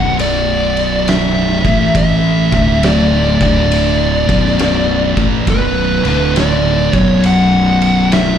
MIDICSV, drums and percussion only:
0, 0, Header, 1, 2, 480
1, 0, Start_track
1, 0, Key_signature, 2, "minor"
1, 0, Tempo, 881057
1, 1061, Time_signature, 4, 2, 24, 8
1, 4567, End_track
2, 0, Start_track
2, 0, Title_t, "Drums"
2, 106, Note_on_c, 9, 51, 83
2, 160, Note_off_c, 9, 51, 0
2, 419, Note_on_c, 9, 51, 66
2, 473, Note_off_c, 9, 51, 0
2, 587, Note_on_c, 9, 51, 91
2, 594, Note_on_c, 9, 38, 112
2, 641, Note_off_c, 9, 51, 0
2, 648, Note_off_c, 9, 38, 0
2, 897, Note_on_c, 9, 36, 101
2, 899, Note_on_c, 9, 51, 66
2, 951, Note_off_c, 9, 36, 0
2, 954, Note_off_c, 9, 51, 0
2, 1062, Note_on_c, 9, 36, 105
2, 1063, Note_on_c, 9, 51, 89
2, 1116, Note_off_c, 9, 36, 0
2, 1117, Note_off_c, 9, 51, 0
2, 1374, Note_on_c, 9, 51, 67
2, 1375, Note_on_c, 9, 36, 99
2, 1428, Note_off_c, 9, 51, 0
2, 1430, Note_off_c, 9, 36, 0
2, 1542, Note_on_c, 9, 51, 88
2, 1550, Note_on_c, 9, 38, 106
2, 1597, Note_off_c, 9, 51, 0
2, 1604, Note_off_c, 9, 38, 0
2, 1856, Note_on_c, 9, 51, 68
2, 1857, Note_on_c, 9, 36, 103
2, 1910, Note_off_c, 9, 51, 0
2, 1911, Note_off_c, 9, 36, 0
2, 2024, Note_on_c, 9, 51, 90
2, 2079, Note_off_c, 9, 51, 0
2, 2337, Note_on_c, 9, 36, 97
2, 2339, Note_on_c, 9, 51, 69
2, 2391, Note_off_c, 9, 36, 0
2, 2393, Note_off_c, 9, 51, 0
2, 2430, Note_on_c, 9, 38, 32
2, 2484, Note_off_c, 9, 38, 0
2, 2502, Note_on_c, 9, 51, 90
2, 2509, Note_on_c, 9, 38, 105
2, 2557, Note_off_c, 9, 51, 0
2, 2564, Note_off_c, 9, 38, 0
2, 2816, Note_on_c, 9, 51, 68
2, 2817, Note_on_c, 9, 36, 103
2, 2870, Note_off_c, 9, 51, 0
2, 2871, Note_off_c, 9, 36, 0
2, 2980, Note_on_c, 9, 51, 96
2, 2982, Note_on_c, 9, 36, 102
2, 3035, Note_off_c, 9, 51, 0
2, 3037, Note_off_c, 9, 36, 0
2, 3295, Note_on_c, 9, 51, 59
2, 3350, Note_off_c, 9, 51, 0
2, 3465, Note_on_c, 9, 51, 81
2, 3472, Note_on_c, 9, 38, 104
2, 3519, Note_off_c, 9, 51, 0
2, 3526, Note_off_c, 9, 38, 0
2, 3777, Note_on_c, 9, 51, 63
2, 3778, Note_on_c, 9, 36, 103
2, 3831, Note_off_c, 9, 51, 0
2, 3832, Note_off_c, 9, 36, 0
2, 3942, Note_on_c, 9, 51, 80
2, 3997, Note_off_c, 9, 51, 0
2, 4258, Note_on_c, 9, 51, 65
2, 4313, Note_off_c, 9, 51, 0
2, 4423, Note_on_c, 9, 51, 84
2, 4430, Note_on_c, 9, 38, 113
2, 4478, Note_off_c, 9, 51, 0
2, 4485, Note_off_c, 9, 38, 0
2, 4567, End_track
0, 0, End_of_file